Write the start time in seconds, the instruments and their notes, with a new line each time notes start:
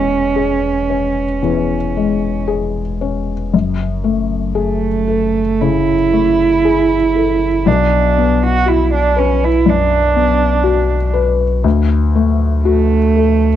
Already playing: sub bass E1, felt piano E2 G#3, cello C#4
0.36 felt piano G#4
0.90 felt piano C#4
1.42 felt piano E2
1.97 felt piano G#3
2.48 felt piano G#4
3.01 felt piano C#4
3.53 sub bass F#1, felt piano F#2
4.04 felt piano A3
4.55 cello A3, felt piano G#4
5.08 felt piano A4
5.61 felt piano C#3, cello E4
6.13 felt piano A3
6.65 felt piano G#4
7.16 felt piano A4
7.66 felt piano B1, sub bass B1, cello D4
8.18 felt piano B3
8.43 cello F#4
8.66 cello E4, felt piano F#4
8.94 cello D4
9.16 cello C#4, felt piano B4
9.44 cello E4
9.66 felt piano F#2, cello D4
10.16 felt piano B3
10.64 felt piano F#4
11.14 felt piano B4
11.64 felt piano D2, sub bass D2
12.15 felt piano A3
12.64 cello A3, felt piano F#4
13.16 felt piano A4